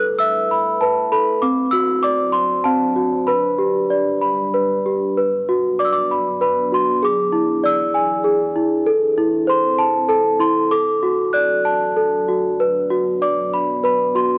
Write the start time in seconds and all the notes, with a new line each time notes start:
Already playing: A3 E4 A4 B4
0.19 E5 E6
0.51 B5
0.81 B4 A5
1.12 A4 B5
1.42 F#3 C4 D4 C5 D6
1.71 F#4 E6
2.03 D5 D6
2.32 C6
2.64 C4 A5
2.96 F#4
3.27 G3 B4 B5
3.59 G4
3.90 D5
4.21 B5
4.54 B4
4.86 G4
5.17 F#3 B3 D4 B4
5.49 F#4
5.79 D5 D6
5.85 E6
5.93 D6
6.11 B5
6.41 B4 B5
6.72 F#4 C6
7.03 E3 G#4 D6
7.33 E4
7.64 D5 E6
7.94 G#5
8.24 G#4
8.56 E4
8.86 C4 A4
9.18 E4
9.47 C5 C6
9.79 A5
10.09 A4 A5
10.40 E4 C6
10.71 F#3 D4 A4 D6
11.03 F#4
11.33 D5 F#6
11.65 A5
11.96 A4
12.28 F#4
12.60 B3 B4
12.90 F#4
13.22 D5 D6
13.54 B5
13.84 B4 B5
14.15 F#4 C6